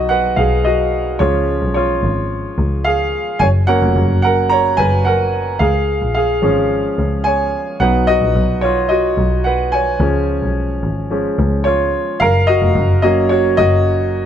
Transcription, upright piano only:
0.00 1.22 F#3 soft
0.00 1.22 B3 soft
0.00 1.22 D#4 medium
0.00 0.66 F#4 medium
0.00 0.64 D#5 medium
0.09 0.36 B4 medium
0.09 0.38 F#5 medium
0.36 0.64 G#4 medium
0.36 0.65 F5 medium
0.64 1.17 F#4 soft
0.64 1.22 D#5 medium
1.19 1.99 F3 soft
1.19 1.99 G#3 soft
1.19 1.99 C#4 soft
1.19 1.72 F4 medium
1.19 1.73 C#5 medium
1.74 2.82 F4 medium
1.74 2.88 C#5 medium
2.84 3.37 G#4 medium
2.84 3.36 F5 medium
3.39 3.47 C#5 medium
3.39 3.46 G#5 medium
3.67 4.05 F#3 soft
3.67 4.05 A#3 soft
3.67 4.05 C#4 medium
3.67 4.20 A#4 medium
3.67 4.21 F#5 medium
4.22 4.30 A#4 medium
4.22 4.29 F#5 medium
4.49 4.58 C#5 medium
4.49 4.56 A#5 medium
4.77 5.04 B4 medium
4.77 5.06 G#5 medium
5.05 5.57 A#4 medium
5.05 5.62 F#5 medium
5.59 6.12 G#4 medium
5.59 6.13 F5 medium
6.14 7.22 G#4 medium
6.14 7.21 F5 medium
6.42 7.76 F3 soft
6.42 7.77 G#3 soft
6.42 7.77 C#4 medium
7.24 7.77 C#5 medium
7.24 7.82 G#5 medium
7.80 8.17 F#3 soft
7.80 8.18 B3 soft
7.80 8.18 D#4 soft
7.80 8.07 B4 medium
7.80 8.09 F#5 medium
8.07 8.60 F#4 medium
8.07 8.59 D#5 medium
8.61 8.89 F4 medium
8.61 8.88 C#5 medium
8.89 9.42 F#4 medium
8.89 9.47 D#5 medium
9.44 9.72 B4 medium
9.44 9.73 F#5 medium
9.72 10.52 C#5 medium
9.72 10.51 G#5 medium
10.01 10.37 F3 soft
10.01 10.38 G#3 soft
10.01 10.38 C#4 medium
11.10 11.35 F3 soft
11.10 11.36 G#3 soft
11.10 11.36 C#4 soft
11.64 12.17 F4 medium
11.64 12.16 C#5 medium
12.20 12.47 A#4 medium
12.20 12.49 F5 medium
12.47 13.00 F#4 medium
12.47 13.01 D#5 medium
13.02 13.82 F#3 medium
13.02 13.82 A#3 soft
13.02 13.82 C#4 medium
13.02 13.30 F#4 medium
13.02 13.29 D#5 medium
13.29 13.57 F#4 medium
13.29 13.59 C#5 medium
13.57 14.26 F#4 medium
13.57 14.26 D#5 loud

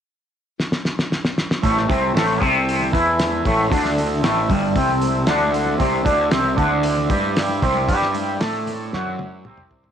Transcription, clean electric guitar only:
1.63 1.88 A2 medium
1.63 1.88 A3 loud
1.88 2.14 C3 medium
1.88 2.14 C4 loud
2.14 2.40 A2 medium
2.14 2.41 A3 medium
2.40 2.92 C3 medium
2.40 2.92 C4 medium
2.92 3.44 E3 medium
2.92 3.44 E4 medium
3.46 3.70 A2 medium
3.46 3.71 A3 loud
3.70 4.22 D3 medium
3.70 4.22 D4 loud
4.23 4.48 A2 medium
4.23 4.48 A3 medium
4.49 4.74 G2 medium
4.49 4.75 G3 medium
4.76 5.27 C3 medium
4.76 5.27 C4 medium
5.27 5.78 D3 medium
5.27 5.79 D4 medium
5.78 6.03 C3 loud
5.78 6.04 C4 medium
6.04 6.30 D3 medium
6.04 6.30 D4 medium
6.31 6.56 C3 medium
6.31 6.56 C4 medium
6.57 7.09 D3 medium
6.57 7.09 D4 medium
7.10 7.61 G3 medium
7.10 7.62 G4 loud
7.62 7.88 C3 medium
7.62 7.88 C4 loud
7.88 8.40 G3 medium
7.88 8.40 G4 loud
8.40 8.92 A3 medium
8.40 8.92 A4 medium
8.94 9.45 F#3 medium
8.94 9.45 F#4 medium
9.47 9.92 C3 medium
9.47 9.92 C4 medium

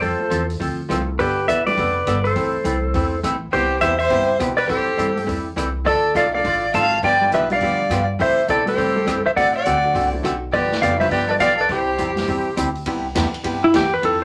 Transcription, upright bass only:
0.02 0.19 F2 medium
0.20 muted upright bass stroke soft
0.31 0.59 E2 loud
0.61 0.89 D2 medium
0.90 1.18 C2 medium
1.19 1.47 G1 medium
1.49 1.77 A1 loud
1.78 2.06 F1 medium
2.07 2.35 G1 loud
2.36 2.53 A1 medium
2.55 muted upright bass stroke soft
2.64 2.93 C2 loud
2.95 3.23 E2 medium
3.23 3.51 A1 medium
3.53 3.80 C2 medium
3.81 4.09 E2 medium
4.10 4.39 G2 medium
4.40 4.68 B2 loud
4.69 4.97 A2 medium
4.97 5.26 G2 medium
5.28 5.56 E2 medium
5.56 5.85 C2 medium
5.86 6.14 D2 medium
6.15 6.43 B1 loud
6.45 6.73 A1 medium
6.74 7.02 G#1 loud
7.03 7.31 G1 medium
7.32 7.60 B1 loud
7.61 7.89 D2 medium
7.89 8.18 G2 medium
8.20 8.48 A2 medium
8.48 8.77 B2 loud
8.78 9.06 C3 medium
9.07 9.24 G2 medium
9.26 muted upright bass stroke soft
9.37 9.64 A2 medium
9.66 9.94 D2 loud
9.96 10.23 C2 medium
10.24 10.52 B1 loud
10.53 10.81 G1 medium
10.82 11.10 F1 loud
11.11 11.39 G1 medium
11.40 11.68 B1 medium
11.69 11.98 C2 medium
11.99 12.27 F2 loud
12.28 12.56 E2 medium
12.57 12.85 D2 medium
12.86 13.14 C2 medium
13.16 13.32 E2 loud
13.33 muted upright bass stroke soft
13.45 13.73 G2 medium
13.74 14.02 E2 loud
14.03 14.24 F2 medium

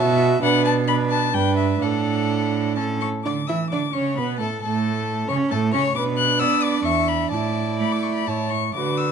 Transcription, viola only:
0.00 0.42 F#4 medium
0.42 0.85 D4 medium
0.88 1.33 D4 medium
1.34 1.81 D4 medium
1.81 2.78 D4 medium
2.77 3.05 C#4 medium
3.25 3.33 D4 medium
3.49 3.57 E4 medium
3.72 3.93 D4 medium
3.93 4.16 C#4 medium
4.18 4.39 B3 medium
4.39 4.47 A3 medium
4.62 5.27 A3 medium
5.28 5.53 C#4 medium
5.51 5.73 A3 medium
5.73 5.81 C#4 medium
5.96 7.35 D4 medium
7.33 8.28 E4 medium
8.29 8.55 E4 medium
8.77 9.12 F#4 medium

